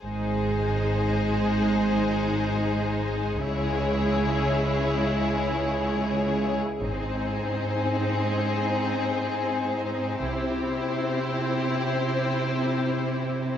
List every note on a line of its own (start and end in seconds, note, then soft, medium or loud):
0.02 3.38 G#1 soft
0.02 3.39 G#2 soft
0.02 3.39 G#3 soft
0.02 3.39 D#4 soft
0.02 3.39 G#4 soft
0.02 3.39 C5 soft
3.43 6.59 C#2 soft
3.43 6.59 C#3 soft
3.43 6.60 G#3 soft
3.43 6.63 E4 soft
3.43 6.60 G#4 soft
3.43 6.59 C#5 soft
6.83 7.35 G#1 soft
6.83 10.18 G#2 soft
6.83 10.19 C4 soft
6.83 10.19 D#4 soft
6.83 10.18 G#4 soft
6.83 10.18 C5 soft
10.19 10.74 C2 soft
10.19 13.58 C3 soft
10.19 13.57 C4 soft
10.19 13.58 E4 soft
10.19 13.57 G4 soft
10.19 13.56 C5 soft